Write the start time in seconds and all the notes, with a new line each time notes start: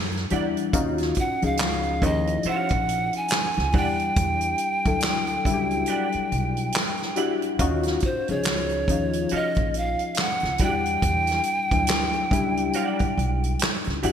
Already playing: F#2 E3 G3 D4 F#4 G4
0.12 closed hi-hat
0.16 snare
0.30 E2 E3 G3 D4 E4 G4 D5 F#5, closed hi-hat
0.57 closed hi-hat
0.73 D#2 C#4 D#4 F4 F#4, kick, closed hi-hat
0.98 snare, closed hi-hat
1.15 kick, closed hi-hat
1.20 F#5
1.42 C#2 F3 C#4 D#4 G#4 F5, closed hi-hat
1.57 snare, clap, closed hi-hat
1.83 closed hi-hat
2.01 D#2 F3 C#4 D#4 E4, kick, closed hi-hat
2.06 D#5
2.27 closed hi-hat
2.43 F#4 C#5 F5, muted upright bass stroke, closed hi-hat
2.48 F#5
2.69 A#1, kick, closed hi-hat
2.89 closed hi-hat
3.13 G#5, closed hi-hat
3.28 snare, clap, closed hi-hat
3.54 C#2, closed hi-hat
3.59 snare
3.72 E2 G3 D4 E4 G4 D5 F#5, kick, open hi-hat
3.77 G5
4.00 closed hi-hat
4.16 E2, kick, closed hi-hat
4.41 closed hi-hat
4.58 closed hi-hat
4.85 D2 F#3 D4 E4 A4, kick, closed hi-hat
5.01 snare, clap, closed hi-hat
5.27 closed hi-hat
5.45 C#2 G3 D4 E4 F#4, kick, closed hi-hat
5.54 G4
5.71 closed hi-hat
5.86 G4 D5 F#5, closed hi-hat
6.12 muted upright bass stroke, closed hi-hat
6.32 B1, closed hi-hat
6.57 closed hi-hat
6.72 snare, clap, closed hi-hat
6.97 closed hi-hat
7.02 snare
7.16 D4 E4 F#4 G4 D5 F#5, closed hi-hat
7.42 closed hi-hat
7.59 D#2 C#4 D#4 F4 F#4, kick, closed hi-hat
7.83 snare, closed hi-hat
8.00 kick, closed hi-hat
8.05 C5
8.28 C#2 F3 C#4 D#4 G#4 C#5, closed hi-hat
8.43 snare, clap, closed hi-hat
8.69 closed hi-hat
8.88 D#2 F3 C#4 D#4 F4, kick, closed hi-hat
9.13 closed hi-hat
9.29 F#4 C#5, muted upright bass stroke, closed hi-hat
9.33 D#5 F5
9.55 A#1, kick, closed hi-hat
9.74 F5, closed hi-hat
9.99 closed hi-hat
10.15 snare, clap, closed hi-hat
10.20 F#5
10.40 C#2, closed hi-hat
10.44 snare
10.58 E2 G3 D4 E4 F#4 G4 D5 F#5, kick, closed hi-hat
10.63 G5
10.68 G4
10.86 closed hi-hat
11.02 E2, kick, closed hi-hat
11.27 snare, closed hi-hat
11.43 closed hi-hat
11.71 D2 F#3 D4 E4, kick, closed hi-hat
11.87 snare, clap, closed hi-hat
12.13 closed hi-hat
12.31 C#2 G3 D4 E4 G4, kick, closed hi-hat
12.57 closed hi-hat
12.73 G4 D5 F#5, closed hi-hat
12.99 muted upright bass stroke, kick, closed hi-hat
13.17 B1, closed hi-hat
13.44 closed hi-hat
13.59 snare, clap, closed hi-hat
13.84 C#2, closed hi-hat
13.89 snare
14.03 F2 D4 E4 F#4 G4 D5 F#5, closed hi-hat